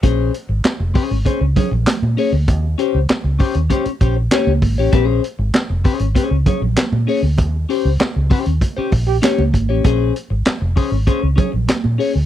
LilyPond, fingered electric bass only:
\new Staff \with { instrumentName = "Fingered electric bass" } { \clef bass \time 4/4 \key bes \dorian \tempo 4 = 98 bes,,8 r16 aes,,16 r16 f,,16 r16 aes,,16 r16 des,16 r16 bes,,16 r16 bes,16 r16 d,16 | ees,8 r16 des,16 r16 des,16 r16 ees,16 r8 bes,,8 r16 des,16 aes,,16 a,,16 | bes,,8 r16 aes,,16 r16 f,,16 r16 aes,,16 r16 des,16 r16 bes,,16 r16 bes,16 r16 d,16 | ees,8 r16 des,16 r16 des,16 r16 ees,16 r8 bes,,8 r16 des,16 aes,,16 a,,16 |
bes,,8 r16 aes,,16 r16 f,,16 r16 aes,,16 r16 des,16 r16 bes,,16 r16 bes,16 r16 d,16 | }